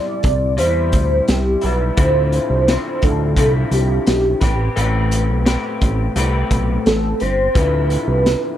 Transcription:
Already playing: clean electric guitar C3 G3 E4, soft synth lead D5
0.23 analog synth bass C2, kick, closed hi-hat
0.57 analog synth bass E2, clean electric guitar C3 G3 E4, soft synth lead C5, closed hi-hat
0.92 analog synth bass D2, kick, closed hi-hat
1.28 analog synth bass C2, soft synth lead G4, snare, closed hi-hat
1.61 analog synth bass B1, clean electric guitar G3 B3 E4, soft synth lead B4, closed hi-hat
1.97 analog synth bass D2, clean electric guitar D3 F3 C4 E4, soft synth lead C5, kick, closed hi-hat
2.32 soft synth lead C5, closed hi-hat
2.50 analog synth bass C2
2.67 clean electric guitar D3 F3 C4 E4, snare, closed hi-hat
3.02 analog synth bass D2, soft synth lead A4, kick, closed hi-hat
3.36 analog synth bass C2, clean electric guitar D3 F3 C4 E4, soft synth lead A4, kick, closed hi-hat
3.71 analog synth bass C2, soft synth lead G4, closed hi-hat
4.07 analog synth bass B1, soft synth lead G4, snare, closed hi-hat
4.41 analog synth bass A1, clean electric guitar C4 G4 B4, kick, snare, closed hi-hat
4.76 analog synth bass A1, clean electric guitar A3 C4 G4 B4, closed hi-hat
5.11 closed hi-hat
5.29 analog synth bass B1
5.45 clean electric guitar A3 C4 G4 B4, snare, closed hi-hat
5.81 analog synth bass A1, kick, closed hi-hat
6.16 analog synth bass C2, clean electric guitar A3 C4 G4 B4, closed hi-hat
6.50 analog synth bass B1, kick, closed hi-hat
6.86 analog synth bass A1, soft synth lead A4, snare, closed hi-hat
7.20 analog synth bass G1, clean electric guitar C4 G4, soft synth lead C5, closed hi-hat
7.54 analog synth bass D2, clean electric guitar D3 F3 C4 E4, soft synth lead B4, kick, closed hi-hat
7.90 closed hi-hat
8.08 analog synth bass C2
8.26 snare, closed hi-hat

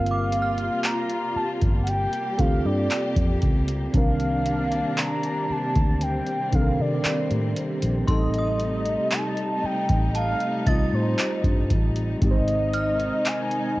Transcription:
Already playing: fingered electric bass G1, string section C3 G3 A#3 F4, tine electric piano A#3 C4 F4 A#4, synth bell A#4, soft synth lead F5
0.06 closed hi-hat
0.11 synth bell D6
0.32 closed hi-hat
0.42 synth bell F6
0.58 closed hi-hat
0.84 soft synth lead A#5, clap, closed hi-hat
1.10 closed hi-hat
1.36 soft synth lead A5, muted fingered electric bass stroke
1.61 fingered electric bass G1, kick, closed hi-hat
1.82 soft synth lead F#5
1.87 string section G4, soft synth lead G5, closed hi-hat
2.13 closed hi-hat
2.38 fingered electric bass D2, tine electric piano C4 F4 G4 A4, soft synth lead F5, kick, closed hi-hat
2.65 fingered electric bass G2, soft synth lead D5
2.91 clap, closed hi-hat
3.16 fingered electric bass F2, kick, closed hi-hat
3.42 fingered electric bass C#2, kick, closed hi-hat
3.68 closed hi-hat
3.93 fingered electric bass C2, tine electric piano D#3 C4 D4 A#4, string section G3 D4, soft synth lead F5, kick, closed hi-hat
4.20 closed hi-hat
4.46 closed hi-hat
4.72 closed hi-hat
4.98 soft synth lead A#5, clap, closed hi-hat
5.23 closed hi-hat
5.50 soft synth lead A5, muted fingered electric bass stroke
5.75 fingered electric bass D2, kick, closed hi-hat
6.01 string section C4, soft synth lead G5, closed hi-hat
6.27 closed hi-hat
6.51 fingered electric bass C2, tine electric piano D#3 C4 D4 A4, soft synth lead F5, kick, closed hi-hat
6.62 tine electric piano A#4
6.79 fingered electric bass C3, soft synth lead D5
7.04 muted fingered electric bass stroke, clap, closed hi-hat
7.31 fingered electric bass A2, closed hi-hat
7.56 closed hi-hat
7.82 fingered electric bass A#1, closed hi-hat
8.07 fingered electric bass A1, tine electric piano G3 C4 D#4 A4, string section G3 A3 D#4, soft synth lead D#5, synth bell C6, kick, closed hi-hat
8.34 closed hi-hat
8.39 synth bell D#6
8.60 closed hi-hat
8.86 closed hi-hat
9.11 soft synth lead A5, clap, closed hi-hat
9.37 closed hi-hat
9.64 soft synth lead G5, muted fingered electric bass stroke
9.89 fingered electric bass A1, kick, closed hi-hat
10.15 soft synth lead F5, synth bell A5, closed hi-hat
10.40 closed hi-hat
10.66 fingered electric bass C2, tine electric piano G3 C4 D#4 F4, soft synth lead D#5, synth bell A6, kick, closed hi-hat
10.93 fingered electric bass A2, soft synth lead C5
11.19 clap, closed hi-hat
11.44 fingered electric bass G2, kick, closed hi-hat
11.70 fingered electric bass A1, kick, closed hi-hat
11.96 closed hi-hat
12.21 fingered electric bass G#1, string section D#3 G#3 D#4, tine electric piano G#3 C4 D#4 G4, soft synth lead D#5, kick, closed hi-hat
12.31 tine electric piano C5
12.48 closed hi-hat
12.73 synth bell F6, closed hi-hat
13.00 closed hi-hat
13.25 soft synth lead G#5, clap, closed hi-hat
13.51 closed hi-hat

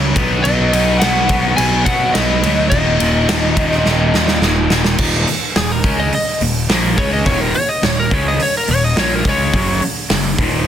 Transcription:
Already playing: picked electric bass C#2, distorted electric guitar F#2 C#3 F#3, overdriven electric guitar F#2 C#3 F#3
0.16 picked electric bass B1, distorted electric guitar B2 F#3 B3, kick, ride
0.43 picked electric bass B1, distorted electric guitar B2 F#3 B3, lead electric guitar D#4 D#5, ride
0.73 picked electric bass B1, distorted electric guitar B2 F#3 B3, ride
0.98 distorted electric guitar B2 F#3, lead electric guitar F#4 F#5, snare, ride
1.02 picked electric bass B1, distorted electric guitar B3
1.29 distorted electric guitar B2 F#3 B3, kick, ride
1.56 picked electric bass B1, distorted electric guitar B2 F#3 B3, lead electric guitar G#4 G#5, ride
1.84 picked electric bass B2, distorted electric guitar B2 F#3 B3, lead electric guitar F#4 F#5, kick, ride
2.12 picked electric bass B1, distorted electric guitar B2 F#3 B3, lead electric guitar D#4 D#5, snare, ride
2.43 picked electric bass D2, distorted electric guitar B2 F#3 B3, ride
2.69 picked electric bass D#1, distorted electric guitar D#2 A#2, lead electric guitar D#4 D#5, kick, ride
2.73 distorted electric guitar D#3
3.00 picked electric bass D#1, distorted electric guitar D#2 A#2 D#3, ride
3.29 distorted electric guitar D#2 A#2 D#3, snare, ride
3.57 distorted electric guitar D#2 A#2 D#3, kick, ride
3.71 snare
3.85 picked electric bass D#1, distorted electric guitar D#2 A#2 D#3, snare
4.13 picked electric bass D#2, distorted electric guitar D#2 A#2 D#3, snare
4.28 snare
4.42 picked electric bass D#1, distorted electric guitar D#2 A#2 D#3, snare
4.70 picked electric bass D#1, distorted electric guitar D#2 A#2 D#3, snare
4.84 snare
4.98 distorted electric guitar D#2 A#2 D#3, kick, crash
5.27 muted picked electric bass stroke, muted distorted electric guitar stroke, muted overdriven electric guitar stroke, open hi-hat
5.56 picked electric bass D#1, distorted electric guitar D#2 A#2, lead electric guitar G#4, snare, open hi-hat
5.72 lead electric guitar A#4
5.84 picked electric bass C#2, distorted electric guitar C#3 G#3 C#4, kick, open hi-hat
6.00 lead electric guitar D#5
6.12 lead electric guitar D#5, muted distorted electric guitar stroke, muted overdriven electric guitar stroke, muted picked electric bass stroke, open hi-hat
6.41 picked electric bass D#1, distorted electric guitar D#2 A#2, open hi-hat
6.69 picked electric bass A#1, distorted electric guitar A#2 F3 A#3, snare, open hi-hat
6.98 distorted electric guitar C#3 G#3 C#4, lead electric guitar C#5, kick
7.13 lead electric guitar D#5
7.26 picked electric bass D#1, distorted electric guitar D#2 A#2 D#3, lead electric guitar C#5, kick, open hi-hat
7.41 lead electric guitar A#4
7.54 lead electric guitar C#5, muted overdriven electric guitar stroke, muted distorted electric guitar stroke, muted picked electric bass stroke, open hi-hat
7.69 lead electric guitar D#5
7.83 picked electric bass D#1, distorted electric guitar D#2 A#2, lead electric guitar C#5, snare, open hi-hat
8.00 lead electric guitar A#4
8.11 picked electric bass C#2, distorted electric guitar C#3 G#3 C#4, lead electric guitar C#5, kick, open hi-hat
8.28 lead electric guitar D#5
8.39 lead electric guitar C#5, muted picked electric bass stroke, muted overdriven electric guitar stroke, muted distorted electric guitar stroke, open hi-hat
8.57 lead electric guitar A#4
8.67 picked electric bass D#1, distorted electric guitar D#2 A#2, lead electric guitar C#5, open hi-hat
8.84 lead electric guitar D#5
8.97 picked electric bass A#1, distorted electric guitar A#2 F3 A#3, lead electric guitar C#5, snare, open hi-hat
9.15 lead electric guitar A#4
9.25 picked electric bass C#2, distorted electric guitar C#3 G#3 C#4, lead electric guitar C#5, kick, open hi-hat
9.53 picked electric bass F#1, distorted electric guitar F#2 C#3 F#3, kick, open hi-hat
9.82 muted overdriven electric guitar stroke, muted picked electric bass stroke, muted distorted electric guitar stroke, open hi-hat
10.10 picked electric bass F#1, distorted electric guitar F#2 C#3, snare, open hi-hat
10.38 picked electric bass D#1, distorted electric guitar D#2 A#2 D#3, kick, open hi-hat

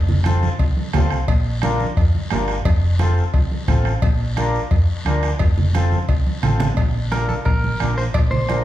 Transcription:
Already playing: fingered electric bass F1
0.09 low conga
0.24 accordion C4 F4 A4, bombo rim, high conga, short guiro
0.43 high conga, short guiro
0.59 fingered electric bass C2, bombo low, cowbell, high conga, long guiro
0.77 high conga
0.93 fingered electric bass D2, accordion C4 F4 A4, bombo low, bombo rim, high conga, low conga, low timbale, short guiro
1.10 fingered electric bass C2, bombo rim, short guiro
1.28 fingered electric bass A#1, bombo low, cowbell, high conga, long guiro
1.62 accordion D4 F4 A#4, bombo rim, high conga, short guiro
1.80 high conga, short guiro
1.97 fingered electric bass F2, bombo low, cowbell, high conga, long guiro
2.15 high conga
2.30 fingered electric bass G1, accordion D4 F4 A#4, bombo rim, high conga, low timbale, short guiro
2.48 bombo rim, short guiro
2.65 fingered electric bass F1, bombo low, cowbell, long guiro
2.99 accordion C4 F4 A4, bombo rim, high conga, short guiro
3.17 short guiro
3.34 fingered electric bass C2, bombo low, cowbell, high conga, long guiro
3.51 high conga
3.68 fingered electric bass A1, accordion C4 F4 A4, bombo low, bombo rim, high conga, low conga, short guiro
3.85 bombo rim, short guiro
4.02 fingered electric bass A#1, bombo low, cowbell, long guiro
4.37 accordion D4 F4 A#4, bombo rim, high conga, short guiro
4.54 short guiro
4.71 fingered electric bass F2, bombo low, cowbell, high conga, long guiro
5.05 fingered electric bass D2, accordion D4 F4 A#4, bombo rim, high conga, short guiro
5.23 bombo rim, short guiro
5.39 fingered electric bass F1, bombo low, cowbell, high conga, long guiro
5.58 low conga
5.74 accordion C4 F4 A4, bombo rim, high conga, short guiro
5.92 high conga, short guiro
6.09 fingered electric bass C2, bombo low, cowbell, high conga, long guiro
6.27 high conga
6.42 fingered electric bass A1, accordion C4 F4 A4, bombo rim, low conga, short guiro
6.60 bombo rim, low conga, short guiro
6.77 fingered electric bass A#1, bombo low, cowbell, high conga, long guiro
7.12 accordion D4 F4 A#4, clean electric guitar A#4, bombo rim, high conga, short guiro
7.29 clean electric guitar A4, high conga, short guiro
7.45 fingered electric bass A#1, clean electric guitar A#4, bombo low, cowbell, high conga, long guiro
7.64 high conga
7.80 fingered electric bass A#1, accordion D4 F4 A#4, bombo rim, high conga, short guiro
7.98 clean electric guitar C5, short guiro
8.14 fingered electric bass A#1, clean electric guitar D5, bombo low, cowbell, high conga
8.31 clean electric guitar C5, low conga
8.48 accordion D4 F4 A#4, bombo rim, high conga, short guiro

